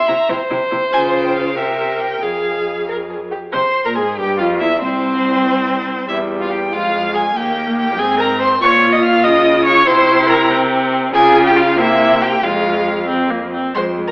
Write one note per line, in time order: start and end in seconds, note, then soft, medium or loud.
0.00 0.31 E5 loud
0.08 0.16 C3 medium
0.08 0.16 E4 medium
0.08 0.29 A#5 medium
0.29 0.37 C3 medium
0.29 0.38 E4 medium
0.29 1.57 C5 loud
0.50 0.59 C3 medium
0.50 0.58 E4 medium
0.71 0.80 C3 medium
0.71 0.79 E4 medium
0.92 1.58 C#3 medium
0.92 1.52 F4 medium
0.92 1.01 G#5 loud
1.25 1.35 G5 medium
1.36 1.59 F5 medium
1.56 2.22 C3 medium
1.56 2.21 G4 medium
1.56 2.24 A#4 medium
1.56 2.02 E5 medium
2.00 2.25 G5 medium
2.22 3.32 F2 medium
2.22 2.83 G#4 medium
2.22 3.34 G#4 medium
2.22 2.89 F5 medium
2.88 2.96 A#4 medium
3.10 3.18 G#4 soft
3.31 3.39 G4 medium
3.52 3.62 C3 medium
3.52 3.83 C5 medium
3.52 3.61 C5 medium
3.52 3.87 C6 loud
3.85 3.98 A#2 medium
3.85 3.89 A#4 medium
3.85 3.96 A#4 medium
3.85 3.97 A#5 medium
3.95 4.19 G#2 medium
3.95 4.04 G#4 medium
3.95 4.19 G#4 medium
3.95 4.16 G#5 medium
4.17 4.41 G2 medium
4.17 4.38 G4 medium
4.17 4.41 G4 medium
4.17 4.38 G5 medium
4.38 4.62 F2 loud
4.38 4.62 F4 medium
4.38 4.59 F4 medium
4.38 4.47 F5 medium
4.60 4.83 E2 medium
4.60 4.68 E4 medium
4.60 4.80 E4 medium
4.60 4.81 E5 medium
4.79 6.09 C2 medium
4.79 6.08 C4 medium
4.79 6.07 C4 loud
4.79 6.06 C5 loud
6.09 6.74 E2 medium
6.09 6.75 G3 medium
6.09 6.17 E4 medium
6.09 6.17 E5 medium
6.40 6.50 F4 medium
6.40 6.53 F5 medium
6.51 6.59 G4 medium
6.51 6.74 G5 medium
6.71 7.35 F2 medium
6.71 7.35 G#3 medium
6.71 7.13 F4 medium
6.71 7.17 F5 loud
7.14 7.22 G#4 medium
7.14 7.38 G#5 loud
7.35 7.99 D#2 medium
7.35 8.00 A#3 medium
7.35 7.77 G4 medium
7.35 7.78 G5 loud
7.78 8.00 G4 medium
7.78 8.01 G5 loud
7.97 8.61 G#2 medium
7.97 8.61 C4 medium
7.97 8.19 G#4 loud
7.97 8.22 G#5 loud
8.20 8.39 A#4 medium
8.20 8.41 A#5 loud
8.40 8.48 C5 loud
8.40 8.61 C6 loud
8.61 9.26 A#2 medium
8.61 9.85 F4 loud
8.61 8.94 C#5 loud
8.61 8.70 C#6 loud
8.92 9.03 D#5 loud
8.92 9.05 D#6 medium
9.03 9.25 F5 loud
9.03 9.26 F6 loud
9.23 9.86 C#3 medium
9.23 9.65 D#5 loud
9.23 9.66 D#6 loud
9.65 9.88 C#5 loud
9.65 9.87 C#6 loud
9.86 11.11 C3 loud
9.86 10.52 E4 loud
9.86 10.28 C5 loud
9.86 10.31 C6 loud
10.28 10.50 A#4 loud
10.28 10.51 A#5 loud
10.51 11.14 C4 loud
11.13 11.79 C#3 loud
11.13 11.75 F4 loud
11.13 11.43 G#4 loud
11.13 11.44 G#5 loud
11.46 11.58 G4 loud
11.46 11.60 G5 loud
11.56 11.80 F4 loud
11.56 11.79 F5 loud
11.77 12.43 C3 loud
11.77 12.42 A#3 loud
11.77 12.23 E4 loud
11.77 12.24 E5 loud
12.22 12.45 G4 loud
12.22 12.45 G5 loud
12.43 13.53 F2 medium
12.43 13.04 G#3 medium
12.43 13.09 F4 medium
12.43 13.10 F5 loud
13.08 13.32 C4 loud
13.31 13.53 A#3 medium
13.54 13.74 C4 medium
13.75 14.12 F2 medium
13.75 13.83 G#3 medium
13.75 13.84 C5 loud
13.75 13.83 C6 loud
13.98 14.06 G#3 medium
14.08 14.12 A#4 medium
14.08 14.12 A#5 medium